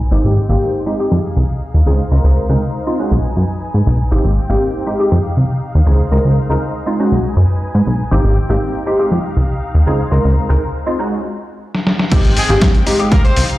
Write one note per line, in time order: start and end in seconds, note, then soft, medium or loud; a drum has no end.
0.00 0.11 B4 medium
0.00 0.11 G#5 medium
0.11 0.19 G#1 medium
0.11 0.86 G#3 medium
0.11 0.32 A#3 medium
0.11 0.33 C4 medium
0.11 0.86 C4 medium
0.11 0.33 D#4 medium
0.11 0.33 G4 medium
0.11 0.86 G5 medium
0.24 0.39 G#1 medium
0.49 0.57 G#1 medium
0.49 0.83 A#3 medium
0.49 0.84 C4 medium
0.49 0.84 D#4 medium
0.49 0.84 G4 medium
0.86 0.97 G#3 medium
0.86 0.98 C4 medium
0.86 0.98 D#4 medium
0.86 4.08 D#4 medium
0.86 0.98 G4 medium
0.86 1.86 G#4 medium
0.86 3.09 F5 medium
0.99 1.12 G#3 medium
0.99 1.12 C4 medium
0.99 1.12 D#4 medium
0.99 1.12 G4 medium
1.11 1.19 F2 medium
1.36 1.44 C2 medium
1.74 1.82 D#2 medium
1.86 2.02 C#2 medium
1.86 2.00 G#3 medium
1.86 2.00 C4 medium
1.86 2.00 D#4 medium
1.86 2.00 G#4 medium
1.86 3.10 C5 medium
2.11 2.19 C#2 medium
2.11 2.46 G#3 medium
2.11 2.46 C4 medium
2.11 2.46 D#4 medium
2.11 2.47 A#4 medium
2.24 2.39 C#2 medium
2.49 2.57 C#2 medium
2.49 2.62 G#3 medium
2.49 2.62 C4 medium
2.49 2.62 D#4 medium
2.49 2.62 A#4 medium
2.86 2.96 G#3 medium
2.86 2.97 C4 medium
2.86 2.97 D#4 medium
2.86 2.97 F4 medium
2.99 3.20 G#3 medium
2.99 3.20 C#4 medium
2.99 3.20 D#4 medium
2.99 3.20 F#4 medium
3.11 3.19 B1 medium
3.11 4.10 B4 medium
3.11 4.11 G#5 medium
3.37 3.44 F#2 medium
3.74 3.82 G#2 medium
3.87 4.02 B1 medium
4.11 4.19 G#1 medium
4.11 4.32 A#3 medium
4.11 4.32 C4 medium
4.11 4.86 C4 medium
4.11 4.33 D#4 medium
4.11 5.85 G4 medium
4.11 4.33 G4 medium
4.11 4.86 G5 medium
4.25 4.39 G#1 medium
4.49 4.57 G#1 medium
4.49 4.84 A#3 medium
4.49 4.84 C4 medium
4.49 4.84 D#4 medium
4.49 4.84 G4 medium
4.86 4.97 G#3 medium
4.86 4.98 C4 medium
4.86 8.08 D#4 medium
4.86 4.98 D#4 medium
4.86 4.98 G4 medium
4.86 7.09 F5 medium
4.99 5.12 G#3 medium
4.99 5.12 C4 medium
4.99 5.12 D#4 medium
4.99 5.12 G4 medium
5.12 5.20 F2 medium
5.37 5.45 C2 medium
5.75 5.82 D#2 medium
5.86 6.02 C#2 medium
5.86 6.00 G#3 medium
5.86 6.00 C4 medium
5.86 6.00 D#4 medium
5.86 6.00 G#4 medium
5.86 7.11 C5 medium
6.11 6.19 C#2 medium
6.11 6.46 G#3 medium
6.11 6.46 C4 medium
6.11 6.47 D#4 medium
6.11 6.47 A#4 medium
6.25 6.39 C#2 medium
6.49 6.57 C#2 medium
6.49 6.62 G#3 medium
6.49 6.62 C4 medium
6.49 6.62 D#4 medium
6.49 6.62 A#4 medium
6.86 6.96 G#3 medium
6.86 6.96 C4 medium
6.86 6.97 D#4 medium
6.86 6.97 F4 medium
7.00 7.20 G#3 medium
7.00 7.20 C#4 medium
7.00 7.20 D#4 medium
7.00 7.20 F#4 medium
7.12 7.20 B1 medium
7.12 8.11 B4 medium
7.12 8.11 G#5 medium
7.37 7.45 F#2 medium
7.75 7.82 G#2 medium
7.87 8.02 B1 medium
8.11 8.20 G#1 medium
8.11 8.32 A#3 medium
8.11 8.33 C4 medium
8.11 8.86 C4 medium
8.11 8.33 D#4 medium
8.11 9.85 G4 medium
8.11 8.33 G4 loud
8.11 8.86 G5 medium
8.24 8.39 G#1 medium
8.49 8.57 G#1 medium
8.49 8.84 A#3 medium
8.49 8.84 C4 medium
8.49 8.84 D#4 medium
8.49 8.84 G4 medium
8.86 8.97 G#3 medium
8.86 8.98 C4 medium
8.86 11.09 D#4 medium
8.86 8.98 D#4 medium
8.86 8.98 G4 medium
8.86 11.09 F5 medium
8.99 9.12 G#3 medium
8.99 9.12 C4 medium
8.99 9.12 D#4 medium
8.99 9.12 G4 medium
9.12 9.19 F2 medium
9.37 9.44 C2 medium
9.75 9.82 D#2 medium
9.87 10.02 C#2 medium
9.87 10.00 G#3 medium
9.87 10.00 C4 medium
9.87 10.00 D#4 medium
9.87 10.00 G#4 medium
9.87 11.11 C5 medium
10.11 10.19 C#2 medium
10.11 10.46 G#3 medium
10.11 10.46 C4 medium
10.11 10.47 D#4 medium
10.11 10.47 A#4 medium
10.25 10.39 C#2 medium
10.49 10.57 C#2 medium
10.49 10.62 G#3 medium
10.49 10.62 C4 medium
10.49 10.62 D#4 medium
10.49 10.62 A#4 medium
10.86 10.96 G#3 medium
10.86 10.96 C4 medium
10.86 10.97 D#4 medium
10.86 10.97 F4 medium
10.99 11.20 G#3 medium
10.99 11.20 C#4 medium
10.99 11.20 D#4 medium
10.99 11.20 F#4 medium
11.75 snare soft
11.87 snare medium
11.99 snare medium
12.11 12.20 G#1 loud
12.11 12.32 A#3 medium
12.11 12.33 C4 medium
12.11 12.86 C4 medium
12.11 12.33 D#4 medium
12.11 12.33 G4 loud
12.11 13.58 G4 medium
12.11 12.86 G5 medium
12.11 kick loud
12.11 closed hi-hat medium
12.11 crash loud
12.25 12.39 G#1 medium
12.25 closed hi-hat soft
12.37 12.57 G#3 medium
12.37 12.57 G#4 medium
12.37 open hi-hat loud
12.49 12.57 G#1 medium
12.49 12.84 A#3 medium
12.49 12.84 C4 medium
12.49 12.84 D#4 medium
12.49 12.84 G4 medium
12.49 closed hi-hat soft
12.61 kick loud
12.61 snare loud
12.61 closed hi-hat loud
12.74 closed hi-hat soft
12.86 12.97 G#3 medium
12.86 12.98 C4 medium
12.86 12.98 D#4 medium
12.86 13.58 D#4 medium
12.86 12.98 G4 medium
12.86 13.58 F5 medium
12.86 open hi-hat loud
12.99 13.12 G#3 medium
12.99 13.12 C4 medium
12.99 13.12 D#4 medium
12.99 13.12 G4 medium
12.99 closed hi-hat soft
13.12 13.20 F2 medium
13.12 13.22 A#3 medium
13.12 13.22 A#4 medium
13.12 kick loud
13.12 closed hi-hat loud
13.24 13.44 C4 medium
13.24 13.44 C5 medium
13.24 closed hi-hat soft
13.37 13.45 C2 medium
13.37 open hi-hat loud
13.50 closed hi-hat soft